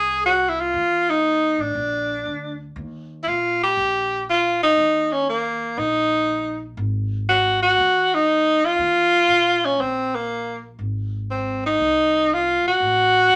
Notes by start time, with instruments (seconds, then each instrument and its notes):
Already playing: upright bass C2, tenor saxophone G#4
0.26 tenor saxophone F#4
0.49 tenor saxophone E4
0.60 tenor saxophone F4
0.73 upright bass D#2
1.10 tenor saxophone D#4
1.58 upright bass A1, tenor saxophone D4
1.75 upright bass A#1
2.25 upright bass D2
2.76 upright bass D#2
3.23 upright bass A#2, tenor saxophone E4
3.28 tenor saxophone F4
3.63 tenor saxophone G4
3.77 upright bass A#1
4.30 tenor saxophone F4
4.63 tenor saxophone D#4
4.77 upright bass D#2
5.12 tenor saxophone C#4
5.29 tenor saxophone A#3
5.77 upright bass A#1, tenor saxophone D#4
6.77 upright bass G#1
7.29 tenor saxophone F#4
7.62 tenor saxophone F#4
7.78 upright bass D#2
8.14 tenor saxophone D#4
8.65 tenor saxophone F4
8.78 upright bass D#2
9.28 upright bass A#2
9.65 tenor saxophone C#4
9.78 upright bass A#1, tenor saxophone C4
10.15 tenor saxophone A#3
10.79 upright bass G#1
11.31 tenor saxophone C4
11.66 tenor saxophone D#4
11.79 upright bass C2
12.34 tenor saxophone F4
12.64 upright bass A#1
12.68 tenor saxophone F#4
12.80 upright bass A1
13.30 upright bass E2